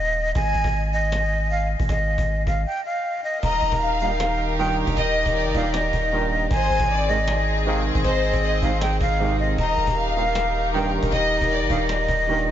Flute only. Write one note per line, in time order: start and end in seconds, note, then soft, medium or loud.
0.00 0.31 D#5 medium
0.35 0.90 G#5 loud
0.93 1.47 D#5 medium
1.51 1.68 F5 medium
1.89 2.43 D#5 medium
2.47 2.64 F5 medium
2.66 2.84 G5 medium
2.85 3.21 F5 medium
3.24 3.41 D#5 medium
3.43 3.97 A#5 loud
4.01 4.55 F5 medium
4.58 4.76 G5 medium
4.97 5.51 D#5 medium
5.54 5.72 F5 medium
5.74 6.47 D#5 medium
6.51 7.05 G#5 loud
7.08 7.63 D#5 medium
7.66 7.84 F5 medium
8.05 8.59 D#5 medium
8.62 8.80 F5 medium
8.81 8.99 G5 medium
9.01 9.37 F5 medium
9.39 9.57 D#5 medium
9.58 10.13 A#5 loud
10.16 10.70 F5 medium
10.74 10.91 G5 medium
11.12 11.66 D#5 medium
11.70 11.87 F5 medium
11.89 12.51 D#5 medium